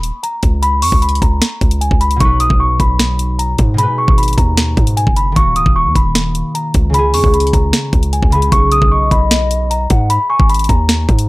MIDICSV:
0, 0, Header, 1, 6, 480
1, 0, Start_track
1, 0, Tempo, 394737
1, 761, Time_signature, 4, 2, 24, 8
1, 13727, End_track
2, 0, Start_track
2, 0, Title_t, "Celesta"
2, 0, Program_c, 0, 8
2, 0, Note_on_c, 0, 83, 76
2, 238, Note_off_c, 0, 83, 0
2, 282, Note_on_c, 0, 82, 78
2, 481, Note_off_c, 0, 82, 0
2, 760, Note_on_c, 0, 83, 105
2, 960, Note_off_c, 0, 83, 0
2, 1001, Note_on_c, 0, 85, 90
2, 1200, Note_off_c, 0, 85, 0
2, 1241, Note_on_c, 0, 83, 77
2, 1440, Note_off_c, 0, 83, 0
2, 1482, Note_on_c, 0, 82, 78
2, 2158, Note_off_c, 0, 82, 0
2, 2201, Note_on_c, 0, 80, 76
2, 2400, Note_off_c, 0, 80, 0
2, 2441, Note_on_c, 0, 83, 89
2, 2640, Note_off_c, 0, 83, 0
2, 2681, Note_on_c, 0, 85, 99
2, 2880, Note_off_c, 0, 85, 0
2, 2921, Note_on_c, 0, 87, 90
2, 3120, Note_off_c, 0, 87, 0
2, 3162, Note_on_c, 0, 85, 87
2, 3360, Note_off_c, 0, 85, 0
2, 3402, Note_on_c, 0, 83, 85
2, 4079, Note_off_c, 0, 83, 0
2, 4121, Note_on_c, 0, 82, 81
2, 4320, Note_off_c, 0, 82, 0
2, 4602, Note_on_c, 0, 83, 95
2, 4801, Note_off_c, 0, 83, 0
2, 4842, Note_on_c, 0, 85, 87
2, 5040, Note_off_c, 0, 85, 0
2, 5081, Note_on_c, 0, 83, 82
2, 5280, Note_off_c, 0, 83, 0
2, 5321, Note_on_c, 0, 82, 79
2, 5998, Note_off_c, 0, 82, 0
2, 6041, Note_on_c, 0, 80, 86
2, 6240, Note_off_c, 0, 80, 0
2, 6282, Note_on_c, 0, 83, 83
2, 6480, Note_off_c, 0, 83, 0
2, 6521, Note_on_c, 0, 85, 106
2, 6720, Note_off_c, 0, 85, 0
2, 6763, Note_on_c, 0, 87, 89
2, 6961, Note_off_c, 0, 87, 0
2, 7002, Note_on_c, 0, 85, 90
2, 7200, Note_off_c, 0, 85, 0
2, 7241, Note_on_c, 0, 83, 74
2, 7918, Note_off_c, 0, 83, 0
2, 7962, Note_on_c, 0, 82, 79
2, 8160, Note_off_c, 0, 82, 0
2, 8442, Note_on_c, 0, 83, 106
2, 8641, Note_off_c, 0, 83, 0
2, 8683, Note_on_c, 0, 85, 92
2, 8881, Note_off_c, 0, 85, 0
2, 8924, Note_on_c, 0, 83, 79
2, 9122, Note_off_c, 0, 83, 0
2, 9163, Note_on_c, 0, 82, 76
2, 9839, Note_off_c, 0, 82, 0
2, 9884, Note_on_c, 0, 80, 76
2, 10081, Note_off_c, 0, 80, 0
2, 10123, Note_on_c, 0, 83, 89
2, 10321, Note_off_c, 0, 83, 0
2, 10362, Note_on_c, 0, 85, 103
2, 10561, Note_off_c, 0, 85, 0
2, 10601, Note_on_c, 0, 87, 95
2, 10800, Note_off_c, 0, 87, 0
2, 10841, Note_on_c, 0, 85, 92
2, 11040, Note_off_c, 0, 85, 0
2, 11083, Note_on_c, 0, 83, 86
2, 11759, Note_off_c, 0, 83, 0
2, 11802, Note_on_c, 0, 82, 81
2, 12000, Note_off_c, 0, 82, 0
2, 12280, Note_on_c, 0, 83, 102
2, 12479, Note_off_c, 0, 83, 0
2, 12521, Note_on_c, 0, 85, 89
2, 12720, Note_off_c, 0, 85, 0
2, 12761, Note_on_c, 0, 83, 83
2, 12960, Note_off_c, 0, 83, 0
2, 13000, Note_on_c, 0, 82, 84
2, 13678, Note_off_c, 0, 82, 0
2, 13727, End_track
3, 0, Start_track
3, 0, Title_t, "Soft synth lead"
3, 0, Program_c, 1, 80
3, 10839, Note_on_c, 1, 75, 91
3, 11992, Note_off_c, 1, 75, 0
3, 12043, Note_on_c, 1, 78, 76
3, 12270, Note_off_c, 1, 78, 0
3, 12521, Note_on_c, 1, 80, 83
3, 12749, Note_off_c, 1, 80, 0
3, 13727, End_track
4, 0, Start_track
4, 0, Title_t, "Harp"
4, 0, Program_c, 2, 46
4, 2629, Note_on_c, 2, 47, 67
4, 2665, Note_on_c, 2, 54, 62
4, 2701, Note_on_c, 2, 63, 65
4, 2736, Note_on_c, 2, 71, 79
4, 4533, Note_off_c, 2, 47, 0
4, 4548, Note_on_c, 2, 47, 66
4, 4583, Note_on_c, 2, 56, 64
4, 4613, Note_off_c, 2, 63, 0
4, 4618, Note_on_c, 2, 63, 64
4, 4649, Note_off_c, 2, 71, 0
4, 4654, Note_on_c, 2, 71, 76
4, 4662, Note_off_c, 2, 54, 0
4, 6469, Note_on_c, 2, 51, 67
4, 6505, Note_on_c, 2, 58, 59
4, 6540, Note_on_c, 2, 66, 60
4, 6578, Note_off_c, 2, 71, 0
4, 6582, Note_off_c, 2, 47, 0
4, 6582, Note_off_c, 2, 56, 0
4, 7906, Note_off_c, 2, 63, 0
4, 8386, Note_on_c, 2, 49, 61
4, 8422, Note_on_c, 2, 56, 60
4, 8457, Note_on_c, 2, 65, 62
4, 8493, Note_on_c, 2, 68, 84
4, 8502, Note_off_c, 2, 51, 0
4, 8530, Note_off_c, 2, 66, 0
4, 10081, Note_off_c, 2, 49, 0
4, 10095, Note_on_c, 2, 49, 54
4, 10098, Note_off_c, 2, 56, 0
4, 10113, Note_on_c, 2, 56, 47
4, 10126, Note_off_c, 2, 65, 0
4, 10130, Note_on_c, 2, 65, 46
4, 10144, Note_off_c, 2, 68, 0
4, 10148, Note_on_c, 2, 68, 54
4, 10366, Note_off_c, 2, 65, 0
4, 10375, Note_off_c, 2, 68, 0
4, 10415, Note_off_c, 2, 58, 0
4, 10422, Note_off_c, 2, 49, 0
4, 10422, Note_off_c, 2, 56, 0
4, 13727, End_track
5, 0, Start_track
5, 0, Title_t, "808-style bass"
5, 0, Program_c, 3, 38
5, 0, Note_on_c, 3, 27, 101
5, 138, Note_off_c, 3, 27, 0
5, 523, Note_on_c, 3, 37, 108
5, 1001, Note_on_c, 3, 41, 98
5, 1020, Note_off_c, 3, 37, 0
5, 1115, Note_off_c, 3, 41, 0
5, 1122, Note_on_c, 3, 37, 101
5, 1467, Note_off_c, 3, 37, 0
5, 1482, Note_on_c, 3, 37, 104
5, 1712, Note_off_c, 3, 37, 0
5, 1962, Note_on_c, 3, 37, 104
5, 2307, Note_off_c, 3, 37, 0
5, 2323, Note_on_c, 3, 37, 103
5, 2668, Note_off_c, 3, 37, 0
5, 2682, Note_on_c, 3, 35, 113
5, 3027, Note_off_c, 3, 35, 0
5, 3042, Note_on_c, 3, 35, 97
5, 3388, Note_off_c, 3, 35, 0
5, 3402, Note_on_c, 3, 35, 105
5, 4323, Note_off_c, 3, 35, 0
5, 4363, Note_on_c, 3, 44, 103
5, 4708, Note_off_c, 3, 44, 0
5, 4962, Note_on_c, 3, 32, 99
5, 5307, Note_off_c, 3, 32, 0
5, 5321, Note_on_c, 3, 39, 102
5, 5782, Note_off_c, 3, 39, 0
5, 5803, Note_on_c, 3, 44, 107
5, 6148, Note_off_c, 3, 44, 0
5, 6163, Note_on_c, 3, 30, 108
5, 6508, Note_off_c, 3, 30, 0
5, 6522, Note_on_c, 3, 27, 105
5, 6762, Note_on_c, 3, 25, 99
5, 6780, Note_off_c, 3, 27, 0
5, 6876, Note_off_c, 3, 25, 0
5, 6882, Note_on_c, 3, 27, 104
5, 7120, Note_on_c, 3, 39, 100
5, 7139, Note_off_c, 3, 27, 0
5, 7235, Note_off_c, 3, 39, 0
5, 7241, Note_on_c, 3, 27, 106
5, 7817, Note_off_c, 3, 27, 0
5, 8203, Note_on_c, 3, 37, 106
5, 8682, Note_on_c, 3, 41, 103
5, 8700, Note_off_c, 3, 37, 0
5, 8796, Note_off_c, 3, 41, 0
5, 8801, Note_on_c, 3, 37, 98
5, 9147, Note_off_c, 3, 37, 0
5, 9162, Note_on_c, 3, 37, 103
5, 9392, Note_off_c, 3, 37, 0
5, 9642, Note_on_c, 3, 37, 105
5, 9987, Note_off_c, 3, 37, 0
5, 10002, Note_on_c, 3, 37, 108
5, 10347, Note_off_c, 3, 37, 0
5, 10362, Note_on_c, 3, 35, 115
5, 10707, Note_off_c, 3, 35, 0
5, 10721, Note_on_c, 3, 35, 98
5, 11067, Note_off_c, 3, 35, 0
5, 11082, Note_on_c, 3, 35, 104
5, 12003, Note_off_c, 3, 35, 0
5, 12043, Note_on_c, 3, 44, 107
5, 12388, Note_off_c, 3, 44, 0
5, 12642, Note_on_c, 3, 32, 104
5, 12987, Note_off_c, 3, 32, 0
5, 13001, Note_on_c, 3, 39, 107
5, 13462, Note_off_c, 3, 39, 0
5, 13482, Note_on_c, 3, 44, 106
5, 13727, Note_off_c, 3, 44, 0
5, 13727, End_track
6, 0, Start_track
6, 0, Title_t, "Drums"
6, 42, Note_on_c, 9, 42, 77
6, 164, Note_off_c, 9, 42, 0
6, 287, Note_on_c, 9, 42, 79
6, 408, Note_off_c, 9, 42, 0
6, 519, Note_on_c, 9, 42, 80
6, 523, Note_on_c, 9, 36, 88
6, 640, Note_off_c, 9, 42, 0
6, 644, Note_off_c, 9, 36, 0
6, 762, Note_on_c, 9, 42, 83
6, 883, Note_off_c, 9, 42, 0
6, 999, Note_on_c, 9, 46, 81
6, 1121, Note_off_c, 9, 46, 0
6, 1122, Note_on_c, 9, 36, 95
6, 1242, Note_on_c, 9, 42, 69
6, 1244, Note_off_c, 9, 36, 0
6, 1322, Note_off_c, 9, 42, 0
6, 1322, Note_on_c, 9, 42, 57
6, 1402, Note_off_c, 9, 42, 0
6, 1402, Note_on_c, 9, 42, 43
6, 1482, Note_on_c, 9, 36, 88
6, 1485, Note_off_c, 9, 42, 0
6, 1485, Note_on_c, 9, 42, 72
6, 1603, Note_off_c, 9, 36, 0
6, 1606, Note_off_c, 9, 42, 0
6, 1722, Note_on_c, 9, 38, 119
6, 1730, Note_on_c, 9, 42, 82
6, 1844, Note_off_c, 9, 38, 0
6, 1851, Note_off_c, 9, 42, 0
6, 1962, Note_on_c, 9, 36, 97
6, 1962, Note_on_c, 9, 42, 48
6, 2081, Note_off_c, 9, 42, 0
6, 2081, Note_on_c, 9, 42, 77
6, 2084, Note_off_c, 9, 36, 0
6, 2203, Note_off_c, 9, 42, 0
6, 2206, Note_on_c, 9, 42, 83
6, 2323, Note_on_c, 9, 36, 97
6, 2328, Note_off_c, 9, 42, 0
6, 2442, Note_on_c, 9, 42, 65
6, 2444, Note_off_c, 9, 36, 0
6, 2562, Note_off_c, 9, 42, 0
6, 2562, Note_on_c, 9, 42, 67
6, 2681, Note_off_c, 9, 42, 0
6, 2681, Note_on_c, 9, 42, 82
6, 2682, Note_on_c, 9, 36, 114
6, 2802, Note_off_c, 9, 42, 0
6, 2804, Note_off_c, 9, 36, 0
6, 2919, Note_on_c, 9, 42, 80
6, 3040, Note_off_c, 9, 42, 0
6, 3042, Note_on_c, 9, 36, 98
6, 3164, Note_off_c, 9, 36, 0
6, 3402, Note_on_c, 9, 36, 87
6, 3404, Note_on_c, 9, 42, 72
6, 3523, Note_off_c, 9, 36, 0
6, 3525, Note_off_c, 9, 42, 0
6, 3642, Note_on_c, 9, 38, 116
6, 3649, Note_on_c, 9, 42, 81
6, 3763, Note_off_c, 9, 38, 0
6, 3771, Note_off_c, 9, 42, 0
6, 3881, Note_on_c, 9, 42, 76
6, 4003, Note_off_c, 9, 42, 0
6, 4126, Note_on_c, 9, 42, 83
6, 4247, Note_off_c, 9, 42, 0
6, 4359, Note_on_c, 9, 42, 81
6, 4363, Note_on_c, 9, 36, 90
6, 4480, Note_off_c, 9, 42, 0
6, 4484, Note_off_c, 9, 36, 0
6, 4601, Note_on_c, 9, 42, 80
6, 4723, Note_off_c, 9, 42, 0
6, 4962, Note_on_c, 9, 36, 96
6, 5083, Note_on_c, 9, 42, 58
6, 5084, Note_off_c, 9, 36, 0
6, 5142, Note_off_c, 9, 42, 0
6, 5142, Note_on_c, 9, 42, 59
6, 5203, Note_off_c, 9, 42, 0
6, 5203, Note_on_c, 9, 42, 62
6, 5263, Note_off_c, 9, 42, 0
6, 5263, Note_on_c, 9, 42, 60
6, 5322, Note_on_c, 9, 36, 87
6, 5325, Note_off_c, 9, 42, 0
6, 5325, Note_on_c, 9, 42, 72
6, 5444, Note_off_c, 9, 36, 0
6, 5447, Note_off_c, 9, 42, 0
6, 5562, Note_on_c, 9, 38, 111
6, 5570, Note_on_c, 9, 42, 83
6, 5684, Note_off_c, 9, 38, 0
6, 5692, Note_off_c, 9, 42, 0
6, 5803, Note_on_c, 9, 36, 97
6, 5803, Note_on_c, 9, 42, 46
6, 5922, Note_off_c, 9, 42, 0
6, 5922, Note_on_c, 9, 42, 82
6, 5924, Note_off_c, 9, 36, 0
6, 6044, Note_off_c, 9, 42, 0
6, 6046, Note_on_c, 9, 42, 85
6, 6163, Note_on_c, 9, 36, 98
6, 6168, Note_off_c, 9, 42, 0
6, 6280, Note_on_c, 9, 42, 77
6, 6284, Note_off_c, 9, 36, 0
6, 6401, Note_off_c, 9, 42, 0
6, 6521, Note_on_c, 9, 42, 83
6, 6522, Note_on_c, 9, 36, 110
6, 6643, Note_off_c, 9, 42, 0
6, 6644, Note_off_c, 9, 36, 0
6, 6760, Note_on_c, 9, 42, 80
6, 6881, Note_off_c, 9, 42, 0
6, 6882, Note_on_c, 9, 36, 101
6, 7004, Note_off_c, 9, 36, 0
6, 7241, Note_on_c, 9, 36, 88
6, 7244, Note_on_c, 9, 42, 71
6, 7363, Note_off_c, 9, 36, 0
6, 7365, Note_off_c, 9, 42, 0
6, 7481, Note_on_c, 9, 38, 116
6, 7488, Note_on_c, 9, 42, 81
6, 7602, Note_off_c, 9, 38, 0
6, 7610, Note_off_c, 9, 42, 0
6, 7721, Note_on_c, 9, 42, 78
6, 7842, Note_off_c, 9, 42, 0
6, 7965, Note_on_c, 9, 42, 80
6, 8087, Note_off_c, 9, 42, 0
6, 8198, Note_on_c, 9, 42, 83
6, 8202, Note_on_c, 9, 36, 92
6, 8320, Note_off_c, 9, 42, 0
6, 8324, Note_off_c, 9, 36, 0
6, 8441, Note_on_c, 9, 42, 83
6, 8562, Note_off_c, 9, 42, 0
6, 8679, Note_on_c, 9, 46, 76
6, 8800, Note_off_c, 9, 46, 0
6, 8802, Note_on_c, 9, 36, 96
6, 8922, Note_on_c, 9, 42, 72
6, 8923, Note_off_c, 9, 36, 0
6, 9001, Note_off_c, 9, 42, 0
6, 9001, Note_on_c, 9, 42, 58
6, 9081, Note_off_c, 9, 42, 0
6, 9081, Note_on_c, 9, 42, 43
6, 9161, Note_on_c, 9, 36, 85
6, 9164, Note_off_c, 9, 42, 0
6, 9164, Note_on_c, 9, 42, 70
6, 9283, Note_off_c, 9, 36, 0
6, 9285, Note_off_c, 9, 42, 0
6, 9401, Note_on_c, 9, 38, 118
6, 9409, Note_on_c, 9, 42, 83
6, 9523, Note_off_c, 9, 38, 0
6, 9531, Note_off_c, 9, 42, 0
6, 9641, Note_on_c, 9, 42, 49
6, 9642, Note_on_c, 9, 36, 95
6, 9762, Note_off_c, 9, 42, 0
6, 9762, Note_on_c, 9, 42, 77
6, 9763, Note_off_c, 9, 36, 0
6, 9883, Note_off_c, 9, 42, 0
6, 9885, Note_on_c, 9, 42, 85
6, 10002, Note_on_c, 9, 36, 97
6, 10006, Note_off_c, 9, 42, 0
6, 10121, Note_on_c, 9, 42, 67
6, 10124, Note_off_c, 9, 36, 0
6, 10241, Note_off_c, 9, 42, 0
6, 10241, Note_on_c, 9, 42, 67
6, 10361, Note_off_c, 9, 42, 0
6, 10361, Note_on_c, 9, 42, 82
6, 10362, Note_on_c, 9, 36, 115
6, 10482, Note_off_c, 9, 42, 0
6, 10483, Note_off_c, 9, 36, 0
6, 10599, Note_on_c, 9, 42, 82
6, 10720, Note_off_c, 9, 42, 0
6, 10722, Note_on_c, 9, 36, 102
6, 10843, Note_off_c, 9, 36, 0
6, 11081, Note_on_c, 9, 36, 92
6, 11085, Note_on_c, 9, 42, 70
6, 11203, Note_off_c, 9, 36, 0
6, 11206, Note_off_c, 9, 42, 0
6, 11321, Note_on_c, 9, 38, 120
6, 11329, Note_on_c, 9, 42, 86
6, 11443, Note_off_c, 9, 38, 0
6, 11450, Note_off_c, 9, 42, 0
6, 11562, Note_on_c, 9, 42, 78
6, 11683, Note_off_c, 9, 42, 0
6, 11806, Note_on_c, 9, 42, 85
6, 11928, Note_off_c, 9, 42, 0
6, 12039, Note_on_c, 9, 42, 84
6, 12043, Note_on_c, 9, 36, 93
6, 12160, Note_off_c, 9, 42, 0
6, 12164, Note_off_c, 9, 36, 0
6, 12281, Note_on_c, 9, 42, 83
6, 12403, Note_off_c, 9, 42, 0
6, 12642, Note_on_c, 9, 36, 100
6, 12762, Note_on_c, 9, 42, 59
6, 12763, Note_off_c, 9, 36, 0
6, 12821, Note_off_c, 9, 42, 0
6, 12821, Note_on_c, 9, 42, 61
6, 12882, Note_off_c, 9, 42, 0
6, 12882, Note_on_c, 9, 42, 62
6, 12941, Note_off_c, 9, 42, 0
6, 12941, Note_on_c, 9, 42, 62
6, 13001, Note_on_c, 9, 36, 90
6, 13003, Note_off_c, 9, 42, 0
6, 13003, Note_on_c, 9, 42, 74
6, 13123, Note_off_c, 9, 36, 0
6, 13125, Note_off_c, 9, 42, 0
6, 13241, Note_on_c, 9, 38, 114
6, 13249, Note_on_c, 9, 42, 84
6, 13363, Note_off_c, 9, 38, 0
6, 13370, Note_off_c, 9, 42, 0
6, 13482, Note_on_c, 9, 36, 97
6, 13482, Note_on_c, 9, 42, 50
6, 13602, Note_off_c, 9, 42, 0
6, 13602, Note_on_c, 9, 42, 82
6, 13603, Note_off_c, 9, 36, 0
6, 13724, Note_off_c, 9, 42, 0
6, 13727, End_track
0, 0, End_of_file